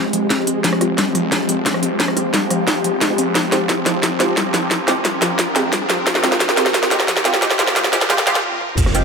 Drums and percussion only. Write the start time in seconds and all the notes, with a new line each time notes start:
0.13 closed hi-hat
0.30 kick, snare, closed hi-hat
0.47 closed hi-hat
0.64 kick, snare, closed hi-hat
0.73 cross-stick
0.81 cross-stick, closed hi-hat
0.98 kick, snare, closed hi-hat
1.15 cross-stick, closed hi-hat
1.32 kick, snare, closed hi-hat
1.49 closed hi-hat
1.66 kick, snare, closed hi-hat
1.74 cross-stick
1.83 closed hi-hat
2.00 kick, snare, closed hi-hat
2.08 cross-stick
2.17 cross-stick, closed hi-hat
2.34 kick, snare, closed hi-hat
2.50 cross-stick, closed hi-hat
2.67 kick, snare, closed hi-hat
2.84 closed hi-hat
3.01 kick, snare, closed hi-hat
3.18 closed hi-hat
3.35 kick, snare, closed hi-hat
3.52 snare, closed hi-hat
3.69 kick, snare, closed hi-hat
3.86 snare, closed hi-hat
4.03 kick, snare, closed hi-hat
4.20 snare, closed hi-hat
4.37 kick, snare, closed hi-hat
4.54 snare, closed hi-hat
4.71 kick, snare, closed hi-hat
4.88 snare, closed hi-hat
5.05 kick, snare, closed hi-hat
5.22 snare, closed hi-hat
5.39 kick, snare, closed hi-hat
5.56 snare, closed hi-hat
5.73 kick, snare, closed hi-hat
5.90 snare, closed hi-hat
6.06 kick, snare, closed hi-hat
6.15 snare
6.24 snare, closed hi-hat
6.32 snare
6.40 kick, snare, closed hi-hat
6.49 snare
6.57 snare, closed hi-hat
6.66 snare
6.74 kick, snare, closed hi-hat
6.83 snare
6.91 snare, closed hi-hat
7.00 snare
7.08 kick, snare, closed hi-hat
7.17 snare
7.25 snare, closed hi-hat
7.34 snare
7.42 kick, snare, closed hi-hat
7.50 snare
7.59 snare, closed hi-hat
7.67 snare
7.76 kick, snare, closed hi-hat
7.84 snare
7.93 snare, closed hi-hat
8.01 snare
8.10 kick, snare, closed hi-hat
8.18 snare
8.27 snare, closed hi-hat
8.35 snare
8.52 high tom
8.61 mid tom
8.69 mid tom
8.77 kick, closed hi-hat, crash
8.86 cross-stick, snare
8.94 closed hi-hat, shaker